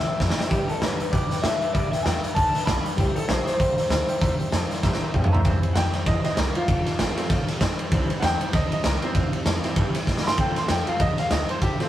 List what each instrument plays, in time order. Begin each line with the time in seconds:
Already playing: clean electric guitar E5
0.07 steel-string acoustic guitar G3 C4 E4 C5, upright piano C5 E5 G5
0.20 upright bass F2, steel-string acoustic guitar G3 C4 E4 C5, upright piano C5 E5 A#5, kick, snare
0.30 snare
0.38 steel-string acoustic guitar G3 C4 E4 C5, upright piano C5 E5 G5, muted upright bass stroke, snare
0.49 upright bass G2, steel-string acoustic guitar G3 D4 G4 B4, clean electric guitar G4, upright piano B4 D5 G5, kick, closed hi-hat
0.68 steel-string acoustic guitar D4 G4 B4, clean electric guitar A4, upright piano B4 D5 E5, muted upright bass stroke, closed hi-hat
0.81 upright bass A2, steel-string acoustic guitar G3 D4 G4 B4, clean electric guitar B4, upright piano B4 D5 A5, snare, closed hi-hat
1.00 steel-string acoustic guitar D4 G4 B4, upright piano B4 D5 E5, muted upright bass stroke, closed hi-hat
1.12 upright bass B2, steel-string acoustic guitar G3 D4 G4 B4, upright piano B4 D5 G5, clean electric guitar D5, kick, closed hi-hat
1.30 steel-string acoustic guitar D4 G4 B4, upright piano B4 D5 G5, muted upright bass stroke, snare, closed hi-hat
1.42 upright bass A2, steel-string acoustic guitar G3 D4 G4 B4, upright piano B4 D5 G5, clean electric guitar E5, snare, closed hi-hat
1.61 steel-string acoustic guitar D4 G4 B4, upright piano B4 D5 A5, muted upright bass stroke, closed hi-hat
1.73 upright bass G2, steel-string acoustic guitar G3 D4 G4 B4, upright piano B4 D5 E5, clean electric guitar D5, kick, closed hi-hat
1.91 steel-string acoustic guitar D4 G4 B4, upright piano B4 D5 G5, clean electric guitar E5, muted upright bass stroke, snare, closed hi-hat
2.03 upright bass E2, steel-string acoustic guitar G3 D4 G4 B4, upright piano B4 D5 G5, clean electric guitar G5, snare, closed hi-hat
2.22 steel-string acoustic guitar D4 G4 B4, upright piano B4 D5 G5, muted upright bass stroke, closed hi-hat
2.35 upright bass D2, steel-string acoustic guitar G3 D4 G4 B4, upright piano B4 D5 A5, clean electric guitar A5, kick, closed hi-hat
2.54 steel-string acoustic guitar D4 G4 B4, upright piano B4 D5 E5, muted upright bass stroke, snare, closed hi-hat
2.66 upright bass B1, steel-string acoustic guitar G3 D4 G4 B4, upright piano D5 A5, clean electric guitar B5, kick, snare, closed hi-hat
2.85 steel-string acoustic guitar D4 G4 B4, upright piano B4 D5 G5, muted upright bass stroke, closed hi-hat
2.97 upright bass C2, steel-string acoustic guitar C3 E3 G3 C4 E4 C5, clean electric guitar G4, upright piano C5 E5 G5, kick, closed hi-hat
3.16 steel-string acoustic guitar G3 C4 E4 C5, clean electric guitar A4, upright piano C5 E5 G5, closed hi-hat
3.28 upright bass A#1, steel-string acoustic guitar G3 C4 E4 C5, clean electric guitar C5, upright piano C5 E5 A5, snare, closed hi-hat
3.47 steel-string acoustic guitar G3 C4 E4 C5, clean electric guitar C5, upright piano C5 E5 A5, snare, closed hi-hat
3.59 upright bass C2, steel-string acoustic guitar C3 E3 G3 C4 E4 C5, upright piano C5 E5 G5, kick, closed hi-hat
3.77 steel-string acoustic guitar G3 C4 E4 C5, upright piano C5 E5 A#5, snare, closed hi-hat
3.90 upright bass D2, steel-string acoustic guitar G3 C4 E4 C5, upright piano C5 E5 A#5, snare, closed hi-hat
4.08 steel-string acoustic guitar G3 C4 E4 C5, upright piano C5 E5 G5, muted upright bass stroke, closed hi-hat
4.21 upright bass E2, steel-string acoustic guitar C3 E3 G3 C4 E4 C5, upright piano C5 E5 A#5, kick, closed hi-hat
4.39 steel-string acoustic guitar G3 C4 E4 C5, upright piano C5 E5 G5, closed hi-hat
4.51 upright bass F2, steel-string acoustic guitar G3 C4 E4 C5, upright piano C5 E5 A5, snare, closed hi-hat
4.69 steel-string acoustic guitar G3 C4 E4 C5, upright piano C5 E5 A5, muted upright bass stroke, snare, closed hi-hat
4.82 upright bass G2, steel-string acoustic guitar C3 E3 G3 C4 E4 C5, upright piano C5 E5 A#5, kick, snare
4.93 snare
5.01 steel-string acoustic guitar G3 C4 E4 C5, upright piano C5 E5 A#5, muted upright bass stroke
5.13 upright bass E2, steel-string acoustic guitar G3 C4 E4 C5, upright piano C5 E5 G5, kick, mid tom
5.24 mid tom
5.32 steel-string acoustic guitar G3 C4 E4 C5, upright piano C5 E5 A#5, floor tom
5.44 upright bass G2, steel-string acoustic guitar C3 E3 G3 C4 E4 C5, upright piano E3 G3 C4, kick, ride
5.62 steel-string acoustic guitar G3 C4 E4 C5, muted upright bass stroke, ride
5.73 upright bass F2, steel-string acoustic guitar G3 E4, upright piano F#5, snare, ride
5.77 upright piano G5
5.93 steel-string acoustic guitar G3 C4 E4 C5, snare, ride
6.06 upright bass E2, steel-string acoustic guitar C3 E3 G3 C4 E4 C5, upright piano D#5, kick, snare, ride
6.23 upright piano E3 G3 C4 D#5, steel-string acoustic guitar G3 C4 E4 C5, muted upright bass stroke, snare, ride
6.36 upright bass C2, steel-string acoustic guitar G3 C4 E4 C5, upright piano A#4, snare, ride
6.54 steel-string acoustic guitar G3 C4 E4 C5, upright piano F4, ride
6.68 upright bass F1, steel-string acoustic guitar F3 A3 C4 F4 A4, kick, ride
6.86 steel-string acoustic guitar C4 F4 A4, snare, ride
6.98 upright bass G1, steel-string acoustic guitar A3 C4 F4 A4, snare, ride
7.16 upright piano F3 A3 C4, steel-string acoustic guitar C4 F4 A4, muted upright bass stroke, snare, ride
7.29 upright bass A1, steel-string acoustic guitar F3 A3 C4 F4 A4, kick, snare, ride
7.47 steel-string acoustic guitar C4 F4 A4, snare, ride
7.61 upright bass A#1, steel-string acoustic guitar C4 F4 A4, kick, snare, ride
7.79 steel-string acoustic guitar C4 F4 A4, ride
7.91 upright bass C2, steel-string acoustic guitar C3 E3 G3 C4 E4 C5, upright piano E3 G3 C4, kick, ride
8.10 steel-string acoustic guitar G3 C4 E4 C5, ride
8.20 upright bass E2, steel-string acoustic guitar G3 C4, upright piano F#5, snare, ride
8.24 steel-string acoustic guitar E4, upright piano G5
8.40 steel-string acoustic guitar G3 C4 E4 C5, muted upright bass stroke, ride
8.53 upright bass D2, steel-string acoustic guitar C3 E3 G3 C4 E4 C5, upright piano D#5, kick, snare, ride
8.72 steel-string acoustic guitar G3 C4 E4 C5, upright piano D#5, ride
8.84 upright bass C2, steel-string acoustic guitar G3 C4 E4 C5, upright piano A#4, snare, ride
9.02 steel-string acoustic guitar G3 C4 E4 C5, upright piano C4, ride
9.14 upright bass E2, steel-string acoustic guitar C3 E3 G3 C4 E4 C5, kick, ride
9.33 steel-string acoustic guitar G3 C4 E4 C5, muted upright bass stroke, ride
9.45 upright bass F2, steel-string acoustic guitar G3 C4 E4 C5, snare, ride
9.63 upright piano E3 G3 C4, steel-string acoustic guitar G3 C4 E4 C5, snare, ride
9.76 upright bass G2, steel-string acoustic guitar C3 E3 G3 C4 E4 C5, kick, ride
9.94 steel-string acoustic guitar G3 C4 E4 C5, muted upright bass stroke, snare, ride
10.06 upright bass A#2, steel-string acoustic guitar G3 C4 E4 C5, kick, snare
10.18 snare
10.23 steel-string acoustic guitar E4 C5, upright piano B5, muted upright bass stroke
10.27 steel-string acoustic guitar G3 C4, upright piano C6, snare
10.38 upright bass A2, upright piano F3 A3 C4 G5, steel-string acoustic guitar F3 A3 C4 F4 A4, kick, ride
10.56 steel-string acoustic guitar C4 F4 A4, upright piano C6, muted upright bass stroke, snare, ride
10.68 upright bass F2, steel-string acoustic guitar A3 C4 F4 A4, upright piano G5, snare, ride
10.87 upright piano F3 A3 C4 F5, steel-string acoustic guitar C4 F4 A4, muted upright bass stroke, ride
10.99 upright bass E2, steel-string acoustic guitar F3 A3 C4 F4 A4, upright piano D#5, kick, ride
11.17 steel-string acoustic guitar C4 F4 A4, upright piano F5, muted upright bass stroke, snare, ride
11.30 upright bass D2, steel-string acoustic guitar A3 C4 F4 A4, upright piano D#5, snare, ride
11.49 steel-string acoustic guitar C4 F4 A4, upright piano C5, ride
11.61 upright bass C2, steel-string acoustic guitar F3 A3 C4 F4 A4, upright piano G4, kick, ride
11.79 upright piano F3 A3 C4 C5, steel-string acoustic guitar C4 F4 A4, snare, ride